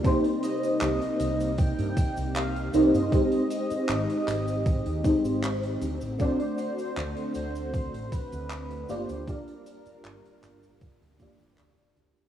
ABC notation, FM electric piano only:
X:1
M:4/4
L:1/8
Q:1/4=78
K:Cm
V:1 name="FM electric piano"
[B,CEGc]6- [B,CEGc] [B,CEGc] | [A,CEGc]4- [A,CEGc] [A,CEGc]2 z | [=A,CD^Fd]6- [A,CDFd] [B,D=FGd] | [B,DFGd]4- [B,DFGd] [B,DFGd]3 |]